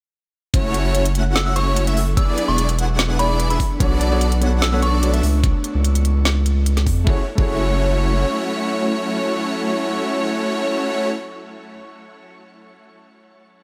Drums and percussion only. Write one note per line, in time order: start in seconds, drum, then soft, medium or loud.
0.54 kick loud
0.54 closed hi-hat medium
0.74 closed hi-hat medium
0.95 closed hi-hat medium
1.05 closed hi-hat medium
1.15 closed hi-hat medium
1.36 snare loud
1.36 closed hi-hat medium
1.56 closed hi-hat medium
1.76 closed hi-hat medium
1.87 closed hi-hat medium
1.97 open hi-hat medium
2.17 kick loud
2.17 closed hi-hat medium
2.38 closed hi-hat medium
2.58 closed hi-hat medium
2.69 closed hi-hat medium
2.79 closed hi-hat medium
2.99 snare loud
2.99 closed hi-hat medium
3.19 closed hi-hat medium
3.40 closed hi-hat medium
3.50 closed hi-hat medium
3.60 kick medium
3.60 open hi-hat medium
3.80 kick loud
3.80 closed hi-hat medium
4.01 closed hi-hat medium
4.21 closed hi-hat medium
4.32 closed hi-hat medium
4.42 closed hi-hat medium
4.62 snare loud
4.62 closed hi-hat medium
4.82 closed hi-hat medium
5.03 closed hi-hat medium
5.14 closed hi-hat medium
5.23 open hi-hat medium
5.44 kick loud
5.44 closed hi-hat medium
5.64 closed hi-hat medium
5.85 closed hi-hat medium
5.95 closed hi-hat medium
6.05 closed hi-hat medium
6.25 snare loud
6.25 closed hi-hat medium
6.46 closed hi-hat medium
6.66 closed hi-hat medium
6.77 snare soft
6.77 closed hi-hat medium
6.87 kick medium
6.87 open hi-hat medium
7.07 kick loud
7.38 kick loud